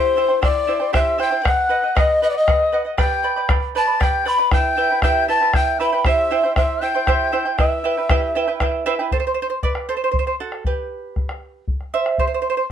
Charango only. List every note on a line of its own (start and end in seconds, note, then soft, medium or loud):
0.00 0.16 E4 medium
0.00 0.17 G4 medium
0.00 0.16 C5 medium
0.00 0.15 E5 medium
0.00 0.17 G5 medium
0.16 0.29 E4 medium
0.16 0.28 C5 medium
0.16 0.30 E5 medium
0.16 0.27 G5 medium
0.28 0.41 E4 soft
0.28 0.41 C5 medium
0.28 0.42 G5 soft
0.41 0.67 E4 medium
0.41 0.67 C5 medium
0.41 0.66 E5 medium
0.41 0.68 G5 medium
0.67 0.80 E4 medium
0.67 0.80 C5 medium
0.67 0.81 E5 medium
0.67 0.79 G5 medium
0.80 0.92 E4 soft
0.80 0.92 C5 soft
0.80 0.93 G5 soft
0.93 1.17 E4 medium
0.93 1.19 G4 medium
0.93 1.18 C5 medium
0.93 1.17 E5 medium
0.93 1.18 G5 medium
1.18 1.31 E4 medium
1.18 1.30 C5 medium
1.18 1.32 E5 medium
1.18 1.30 G5 medium
1.31 1.43 E4 soft
1.31 1.44 C5 soft
1.31 1.45 G5 medium
1.43 1.68 B4 medium
1.43 1.69 D#5 medium
1.43 1.69 F#5 medium
1.69 1.83 B4 medium
1.69 1.83 D#5 medium
1.69 1.81 F#5 medium
1.82 1.95 D#5 soft
1.82 1.95 F#5 soft
1.95 2.21 B4 medium
1.95 2.22 D#5 medium
1.95 2.22 F#5 medium
2.22 2.35 B4 medium
2.22 2.35 D#5 medium
2.22 2.33 F#5 medium
2.34 2.47 D#5 soft
2.34 2.47 F#5 soft
2.47 2.71 B4 medium
2.47 2.72 D#5 medium
2.47 2.73 F#5 medium
2.72 2.86 B4 medium
2.72 2.85 D#5 medium
2.72 2.84 F#5 medium
2.85 2.98 D#5 soft
2.85 2.97 F#5 soft
2.98 3.24 G4 medium
2.98 3.23 B4 medium
2.98 3.23 D5 medium
2.98 3.22 G5 medium
2.98 3.23 B5 medium
3.23 3.37 B4 medium
3.23 3.36 D5 medium
3.23 3.37 G5 medium
3.23 3.35 B5 medium
3.36 3.48 B4 soft
3.36 3.49 D5 soft
3.36 3.49 B5 soft
3.49 3.74 B4 medium
3.49 3.74 D5 medium
3.49 3.74 G5 medium
3.49 3.75 B5 medium
3.75 3.87 B4 medium
3.75 3.87 D5 medium
3.75 3.88 G5 medium
3.75 3.86 B5 medium
3.87 3.99 B4 soft
3.87 3.99 D5 soft
3.87 3.99 B5 soft
4.00 4.26 G4 medium
4.00 4.24 B4 medium
4.00 4.25 D5 medium
4.00 4.24 G5 medium
4.00 4.25 B5 medium
4.25 4.39 B4 medium
4.25 4.38 D5 medium
4.25 4.39 G5 medium
4.25 4.37 B5 medium
4.38 4.51 B4 soft
4.38 4.52 D5 medium
4.38 4.52 B5 medium
4.51 4.76 E4 medium
4.51 4.76 B4 medium
4.51 4.76 E5 medium
4.51 4.77 G5 medium
4.77 4.90 E4 medium
4.77 4.90 B4 medium
4.77 4.90 E5 medium
4.77 4.89 G5 medium
4.90 5.02 E4 soft
4.90 5.03 B4 soft
4.90 5.03 G5 soft
5.03 5.27 E4 medium
5.03 5.29 G4 medium
5.03 5.28 B4 medium
5.03 5.27 E5 medium
5.03 5.28 G5 medium
5.28 5.41 E4 medium
5.28 5.41 B4 medium
5.28 5.41 E5 medium
5.28 5.40 G5 medium
5.41 5.54 E4 soft
5.41 5.54 B4 soft
5.41 5.54 G5 soft
5.54 5.79 E4 medium
5.54 5.79 B4 medium
5.54 5.78 E5 medium
5.54 5.80 G5 medium
5.80 5.93 E4 medium
5.80 5.92 B4 medium
5.80 5.93 E5 medium
5.80 5.91 G5 medium
5.93 6.05 E4 soft
5.93 6.06 B4 medium
5.93 6.05 G5 medium
6.06 6.30 E4 medium
6.06 6.31 G4 medium
6.06 6.31 C5 medium
6.06 6.29 E5 medium
6.06 6.31 G5 medium
6.30 6.44 E4 medium
6.30 6.43 C5 medium
6.30 6.44 E5 medium
6.30 6.42 G5 medium
6.43 6.56 E4 soft
6.43 6.56 C5 soft
6.43 6.56 G5 soft
6.56 6.81 E4 medium
6.56 6.82 C5 medium
6.56 6.80 E5 medium
6.56 6.82 G5 medium
6.81 6.95 E4 medium
6.81 6.94 C5 medium
6.81 6.95 E5 medium
6.81 6.93 G5 medium
6.95 7.07 E4 soft
6.95 7.07 C5 soft
6.95 7.07 G5 medium
7.07 7.32 E4 medium
7.07 7.33 G4 medium
7.07 7.32 C5 medium
7.07 7.31 E5 medium
7.07 7.32 G5 medium
7.32 7.45 E4 medium
7.32 7.45 C5 medium
7.32 7.46 E5 medium
7.32 7.44 G5 medium
7.45 7.57 E4 soft
7.45 7.59 C5 soft
7.45 7.58 G5 medium
7.58 7.83 E4 medium
7.58 7.84 B4 medium
7.58 7.83 E5 soft
7.58 7.84 G5 medium
7.84 7.97 E4 medium
7.84 7.97 B4 medium
7.84 7.97 E5 medium
7.84 7.96 G5 medium
7.97 8.09 E4 soft
7.97 8.09 B4 soft
7.97 8.10 G5 soft
8.10 8.35 E4 medium
8.10 8.35 G4 medium
8.10 8.35 B4 medium
8.10 8.34 E5 medium
8.10 8.36 G5 medium
8.35 8.48 E4 medium
8.35 8.47 B4 medium
8.35 8.48 E5 medium
8.35 8.46 G5 medium
8.48 8.60 E4 soft
8.48 8.60 B4 soft
8.48 8.60 G5 medium
8.60 8.85 E4 medium
8.60 8.85 B4 medium
8.60 8.85 E5 medium
8.60 8.86 G5 medium
8.86 8.99 E4 medium
8.86 8.98 B4 medium
8.86 8.94 C5 medium
8.86 8.93 E5 loud
8.86 8.98 G5 medium
8.99 9.13 E4 soft
8.99 9.12 B4 medium
8.99 9.12 G5 medium
9.12 9.20 A4 medium
9.12 9.19 C5 medium
9.20 9.26 C5 medium
9.27 9.33 C5 medium
9.34 9.41 C5 medium
9.42 9.49 C5 medium
9.50 9.58 C5 medium
9.63 9.88 B4 medium
9.63 9.88 D5 medium
9.89 9.96 A4 medium
9.89 9.96 C5 medium
9.97 10.03 C5 medium
10.04 10.10 C5 medium
10.12 10.18 C5 medium
10.19 10.26 C5 medium
10.27 10.35 C5 medium
10.40 10.64 F#4 medium
10.40 10.64 A4 medium
10.66 11.64 G4 medium
10.66 11.64 B4 medium
11.94 12.18 C5 medium
11.94 12.17 E5 medium
12.19 12.26 G4 medium
12.19 12.26 C5 medium
12.27 12.33 C5 medium
12.34 12.41 C5 medium
12.42 12.49 C5 medium
12.50 12.56 C5 medium
12.57 12.65 C5 medium